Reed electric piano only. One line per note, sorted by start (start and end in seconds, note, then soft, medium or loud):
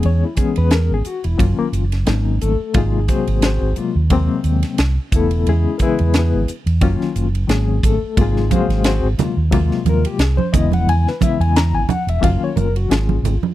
0.00 0.25 E3 medium
0.00 0.25 G#3 medium
0.00 0.26 B3 medium
0.00 0.26 C#4 medium
0.00 0.26 G#4 medium
0.06 0.23 C#5 medium
0.24 0.38 E4 soft
0.36 1.02 E3 medium
0.36 1.02 G#3 medium
0.36 1.02 B3 medium
0.36 1.02 C#4 medium
0.36 0.93 G#4 medium
0.58 0.72 B4 medium
0.74 0.91 A#4 medium
0.94 1.07 G#4 medium
1.07 1.25 F#4 medium
1.24 1.39 E4 medium
1.37 1.83 D#3 medium
1.37 1.83 F#3 medium
1.37 1.58 A#3 medium
1.37 1.83 C#4 medium
1.37 1.84 F4 medium
1.59 1.68 A#3 medium
2.06 2.51 D#3 medium
2.06 2.51 F#3 medium
2.06 2.51 A#3 medium
2.06 2.51 C#4 medium
2.06 2.52 D#4 medium
2.42 2.75 A3 medium
2.42 2.75 A4 medium
2.74 2.98 C3 medium
2.74 2.98 F#3 medium
2.74 2.98 G#3 medium
2.74 2.98 A#3 medium
2.74 3.10 D#4 medium
2.74 2.99 F4 medium
2.74 3.08 G#4 medium
3.08 3.53 C3 medium
3.08 3.53 F#3 medium
3.08 3.53 G#3 medium
3.08 3.53 A#3 medium
3.08 3.42 C4 medium
3.08 3.43 F#4 medium
3.08 3.42 G#4 medium
3.08 3.42 C5 medium
3.45 3.78 C4 medium
3.45 3.78 F#4 medium
3.45 3.78 G#4 medium
3.45 3.78 C5 medium
3.76 4.00 C3 medium
3.76 4.00 F#3 medium
3.76 4.00 G#3 medium
3.76 4.00 A#3 medium
3.76 4.01 F4 medium
4.11 4.76 C3 loud
4.11 4.76 F#3 medium
4.11 4.76 G#3 medium
4.11 4.76 A#3 medium
4.11 4.77 C4 loud
5.12 5.68 C#3 medium
5.12 5.69 E3 medium
5.12 5.69 B3 medium
5.12 5.48 E4 medium
5.16 5.48 A3 medium
5.16 5.48 A4 medium
5.48 5.80 G#3 medium
5.48 5.81 C#4 medium
5.48 5.81 E4 medium
5.48 5.81 G#4 medium
5.78 6.45 C#3 medium
5.78 6.45 E3 medium
5.78 6.46 G#3 medium
5.78 6.18 B3 medium
5.78 5.82 A#4 medium
5.78 6.14 B4 medium
5.82 6.18 E4 medium
5.82 6.15 G#4 medium
6.18 6.50 B3 medium
6.18 6.50 E4 medium
6.18 6.50 G#4 medium
6.18 6.50 B4 medium
6.81 7.26 D#3 medium
6.81 7.26 F#3 medium
6.81 7.26 A#3 medium
6.81 7.26 C#4 medium
6.81 7.27 F4 loud
7.47 7.93 D#3 medium
7.47 7.93 F#3 medium
7.47 7.93 A#3 medium
7.47 7.94 C#4 medium
7.47 7.94 G#4 medium
7.85 8.18 A3 medium
7.85 8.18 A4 medium
8.17 8.40 C3 medium
8.17 8.40 F#3 medium
8.17 8.20 G#3 medium
8.17 8.41 A#3 medium
8.17 8.21 F4 medium
8.21 8.49 G#3 medium
8.21 8.53 D#4 medium
8.21 8.53 F4 medium
8.21 8.53 G#4 medium
8.50 8.95 C3 medium
8.50 8.95 F#3 medium
8.50 8.95 G#3 medium
8.50 8.95 A#3 medium
8.50 8.86 C4 medium
8.50 8.85 F#4 medium
8.50 8.85 C5 medium
8.50 8.95 F5 medium
8.54 8.86 G#4 medium
8.87 9.07 C4 medium
8.87 9.07 F#4 medium
8.87 9.08 G#4 medium
8.87 9.07 C5 medium
9.18 9.41 C3 medium
9.18 9.42 F#3 medium
9.18 9.42 G#3 medium
9.18 9.42 A#3 medium
9.18 9.42 F4 medium
9.51 10.17 C3 loud
9.51 10.17 F#3 medium
9.51 10.17 G#3 medium
9.51 10.17 A#3 medium
9.51 10.18 F4 loud
9.89 10.07 A#4 medium
10.06 10.21 G4 medium
10.20 10.39 G#4 medium
10.37 10.53 C5 medium
10.52 11.09 C#3 medium
10.52 11.09 E3 medium
10.52 11.09 G#3 medium
10.52 11.10 B3 medium
10.52 11.10 E4 medium
10.52 10.72 D#5 medium
10.74 10.88 F#5 medium
10.89 11.07 G#5 loud
11.09 11.23 B4 medium
11.21 11.86 C#3 medium
11.21 11.86 E3 medium
11.21 11.86 G#3 medium
11.21 11.87 B3 medium
11.21 11.87 E4 medium
11.21 11.41 E5 medium
11.41 11.56 G#5 medium
11.56 11.75 A#5 medium
11.75 11.89 G#5 medium
11.90 12.08 F#5 medium
12.09 12.24 E5 medium
12.21 12.66 D#3 medium
12.21 12.66 F#3 medium
12.21 12.66 A#3 medium
12.21 12.67 C#4 medium
12.21 12.67 F4 medium
12.21 12.42 F5 medium
12.44 12.58 C#5 medium
12.56 12.75 A#4 medium
12.77 12.91 F#4 medium
12.88 13.33 D#3 medium
12.88 13.34 F#3 medium
12.88 13.34 A#3 soft
12.88 13.34 C#4 medium
12.88 13.54 F4 medium
12.88 13.35 G#4 medium